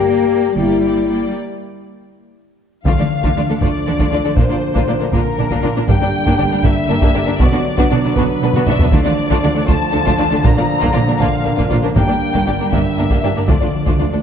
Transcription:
Already playing: G1 A#3 G4
0.07 A#3 D5 G5
0.31 A#3 D5 G5
0.57 G1 G3 A#3 E4 D5 G5
0.83 A#3 D5 G5
1.08 A#3 D5 G5
2.84 D2 D3 F3 A3 D4 F4 F5, taiko
2.98 D3 A3 D4 F4 D5
3.22 D3 A3 D4 F4, taiko
3.36 D2 D3 A3 D4 F4 D5
3.49 D3 A3 D4 A4
3.61 D2 D3 A3 D4 F4 D5, taiko
3.86 D2 D3 A3 D4 A4
3.99 D3 A3 D4 F4, taiko
4.11 D2 D3 A3 D4 F4 D5
4.25 D3 A3 D4 A4
4.36 A#1 A#2 A#3 D4 F4 C5, taiko
4.49 A#2 A#3 D4 F4 D5
4.74 A#2 A#3 D4 F4, taiko
4.88 A#1 A#2 A#3 D4 F4 D5
5.00 A#2 A#3 D4 A#4
5.12 A#1 A#2 A#3 D4 F4 A#4, taiko
5.38 A#1 A#2 A#3 D4 A#4
5.50 A#2 A#3 D4 F4, taiko
5.62 A#1 A#2 A#3 D4 F4 D5
5.76 A#2 A#3 D4 A#4
5.88 G1 G2 D3 G3 A#3 D4 G4 G5, taiko
6.01 G2 A#3 D4 G4 D5
6.26 G2 A#3 D4 G4, taiko
6.38 G1 G2 A#3 D4 G4 D5
6.51 G2 A#3 D4 A#4
6.64 G1 G2 A#3 D4 G4 E5, taiko
6.88 G1 G2 A#3 D4 A#4
7.00 G2 A#3 D4 G4, taiko
7.14 G1 G2 A#3 D4 G4 D5
7.26 G2 A#3 D4 A#4
7.40 B1 B2 F#3 B3 D4 F#4 D5, taiko
7.53 B2 B3 D4 F#4 D5
7.78 B2 B3 D4 F#4, taiko
7.90 B1 B2 B3 D4 F#4 D5
8.04 B2 B3 D4 B4
8.16 B1 B2 B3 D4 F#4 B4, taiko
8.42 B1 B2 B3 D4 B4
8.53 B2 B3 D4 F#4, taiko mid
8.66 B1 B2 B3 D4 F#4 D5 E5, taiko low-mid
8.79 B2 B3 D4 B4, taiko low
8.92 D2 D3 F3 A3 D4 F4 D5, taiko
9.05 D3 A3 D4 F4 D5
9.30 D3 A3 D4 F4, taiko
9.43 D2 D3 A3 D4 F4 D5
9.55 D3 A3 D4 A4
9.66 D2 D3 A3 D4 F4 A5, taiko
9.91 D2 D3 A3 D4 A4
10.04 A3 D4 F4, taiko
10.09 D3
10.18 D2 D3 A3 D4 F4 D5
10.31 D3 A3 D4 A4
10.43 A#1 A#2 A#3 D4 F4 A#5, taiko
10.57 A#2 A#3 D4 F4 D5
10.80 A#3 D4 F4, taiko
10.84 A#2
10.92 A#1 A#2 A#3 D4 F4 D5
11.07 A#2 A#3 D4 A#4
11.20 A#1 A#2 A#3 D4 F4 F5, taiko
11.44 A#1 A#2 A#3 D4 A#4
11.56 A#2 A#3 D4 F4, taiko
11.69 A#1 A#2 A#3 D4 F4 D5
11.82 A#2 A#3 D4 A#4
11.95 G1 G2 D3 G3 A#3 D4 G4 G5, taiko
12.07 G2 A#3 D4 G4 D5
12.33 G2 A#3 D4 G4, taiko
12.46 G1 G2 A#3 D4 G4 D5
12.59 G2 A#3 D4 A#4
12.72 G1 G2 A#3 D4 G4 E5, taiko
12.98 G1 G2 A#3 D4 A#4
13.10 G2 A#3 D4 G4, taiko
13.22 G1 G2 A#3 D4 G4 D5
13.36 G2 A#3 D4 A#4
13.47 D2 F3 A3 D4 F4 D5, taiko
13.61 D2 D3 A3 D4 F4 D5
13.71 D3
13.79 D3
13.86 D2 A3 D4 F4, taiko
13.94 D2 D3
13.99 D2 D3 A3 D4 F4 D5
14.09 D3 A3 D4 A4
14.13 D2 D3

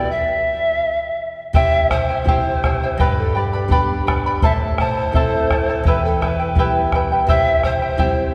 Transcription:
Already playing: E4 B4 D5 G5
0.11 E5
1.53 C3 E4 G4 C5 E5 G5, bombo low
1.90 E4 C5 E5 G5, bombo rim, bombo low
2.09 E4 C5 G5
2.24 C4 E4 G4, bombo low
2.28 E4 C5 E5 G5
2.64 E4 C5 E5 G5, bombo rim, bombo low
2.83 E4 C5 G5
2.98 G2 G4 B4 D5 G5 B5, bombo low
3.18 A4
3.35 G4 B4 D5 G5 B5
3.53 B4 D5 B5
3.68 G3 B3 D4 G4 B4 D5 G5, bombo low
3.72 B5
4.07 B4 D5 G5 B5, bombo rim, bombo low
4.26 B4 D5 B5
4.42 A2 E4 A4 C5 E5 A5, bombo low
4.78 E4 A4 C5 E5 A5, bombo rim, bombo low
4.98 E4 A4 A5
5.12 A3 C4 E4 C5 E5, bombo low
5.16 A4 A5
5.51 E4 A4 E5 A5, bombo rim, bombo low
5.69 E4 A4 A5
5.84 E2 E4 G4 B4 E5, bombo low
5.88 B4 G5
6.05 A4
6.21 E4 B4 E5 G5, bombo rim, bombo low
6.39 E4 B4 G5
6.55 G3 B3 E4 G4, bombo low
6.59 B4 E5 G5
6.92 E4 B4 E5 G5, bombo rim, bombo low
7.12 E4 B4 G5
7.27 C3 E4 G4 C5 E5 G5, bombo low
7.63 E4 C5 E5 G5, bombo rim, bombo low
7.82 E4 C5 G5
7.97 G3 C4 E4 G4 C5 E5 G5, bombo low

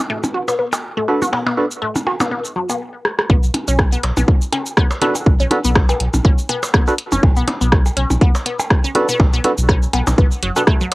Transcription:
0.10 A3
0.24 percussion blips, cabasa
0.34 F#4
0.48 B3, cabasa, percussion blips
0.59 B3
0.73 percussion blips, cabasa
0.97 A3
1.08 D4 F#4 A4 B4
1.22 F#4, percussion blips, cabasa
1.33 B3, percussion blips
1.46 B3, percussion blips
1.57 D4 F#4 A4 B4
1.71 cabasa
1.82 A3
1.96 percussion blips, cabasa
2.07 F#4, percussion blips
2.20 B3, percussion blips, cabasa
2.31 B3
2.45 cabasa
2.56 F#3
2.69 B3, percussion blips, cabasa
3.05 cross-stick
3.19 cross-stick
3.30 B1 B3, kick
3.43 B1, cabasa
3.54 closed hi-hat, percussion blips
3.68 B1 C#4, cabasa
3.79 kick, cross-stick, percussion blips
3.92 B3, cabasa
4.03 B1, closed hi-hat, percussion blips
4.17 B1 B3, percussion blips, cabasa
4.28 kick
4.42 cabasa
4.53 C#4, closed hi-hat, percussion blips
4.66 cabasa
4.77 B3, kick, cross-stick
4.91 cabasa, percussion blips
5.02 B3 D4 F#4 A4 B4, closed hi-hat, percussion blips
5.15 percussion blips, cabasa
5.26 B1, kick
5.40 B1 C#4, cabasa
5.51 D4 F#4 A4 B4, closed hi-hat, percussion blips
5.65 B1 B3, cabasa
5.75 kick, cross-stick, percussion blips
5.89 B3, percussion blips, cabasa
6.00 B1, closed hi-hat
6.14 B1, percussion blips, cabasa
6.25 B1 C#4, kick
6.38 cabasa
6.49 B3, closed hi-hat, percussion blips
6.63 cabasa, percussion blips
6.74 B3, kick, cross-stick
6.87 D4 F#4 A4 B4, cabasa
6.98 closed hi-hat
7.12 F#1 C#4, percussion blips, cabasa
7.23 B1, kick, percussion blips
7.37 B1 B3, cabasa
7.48 closed hi-hat, percussion blips
7.61 B1 B3, cabasa
7.72 kick, cross-stick
7.86 percussion blips, cabasa
7.97 B1 C#4, closed hi-hat
8.10 B1, percussion blips, cabasa
8.21 B3, kick
8.35 cabasa, percussion blips
8.46 B3, closed hi-hat
8.60 percussion blips, cabasa
8.70 kick, cross-stick
8.84 C#4, cabasa
8.95 D4 F#4 A4 B4, closed hi-hat, percussion blips
9.09 B3, cabasa
9.20 B1, kick, percussion blips
9.33 B1 B3, cabasa
9.44 D4 F#4 A4 B4, closed hi-hat, percussion blips
9.58 B1, cabasa
9.69 C#4, kick, cross-stick
9.82 cabasa
9.93 B1 B3, closed hi-hat, percussion blips
10.07 B1, percussion blips, cabasa
10.18 B1 B3, kick
10.32 cabasa
10.43 F#1 F#3, closed hi-hat
10.56 B3 D4 F#4 A4 B4, percussion blips, cabasa
10.67 A3, kick, cross-stick
10.81 F#3, cabasa

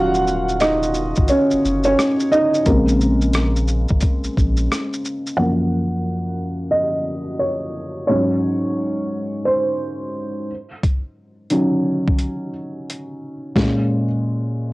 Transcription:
Already playing: D#1 D#3 F#3 C#4 F4 F#4 F5 F#5
0.14 shaker
0.27 shaker
0.49 shaker
0.60 D#4 D#5, cross-stick, closed hi-hat, shaker
0.83 shaker
0.94 shaker
1.16 G#1, kick, shaker
1.28 C#4 C#5, closed hi-hat, shaker
1.51 F#1, shaker
1.65 F#1, shaker
1.84 C#4 C#5, shaker
1.99 cross-stick, closed hi-hat, shaker
2.20 shaker
2.32 D#4 D#5, shaker
2.54 shaker
2.66 A#1 C#3 G#3 A#3 C4 A#4, kick, closed hi-hat, shaker
2.88 shaker
3.01 shaker
3.21 shaker
3.33 cross-stick, closed hi-hat, shaker
3.56 shaker
3.68 shaker
3.89 G#1, kick, shaker
4.01 kick, closed hi-hat, shaker
4.24 A#1, shaker
4.37 A#1, kick, shaker
4.57 shaker
4.72 cross-stick, closed hi-hat, shaker
4.93 shaker
5.05 shaker
5.27 shaker
5.37 F#2 F3 A#3 F#5
6.71 D#5
7.39 C#5
8.07 G#2 F#3 C#4 C#5
9.45 C5
10.83 kick, closed hi-hat
11.50 D#3 F#3 C#4, closed hi-hat
12.08 kick
12.18 closed hi-hat
12.90 closed hi-hat
13.55 A#2 G#3 C#4, kick, snare

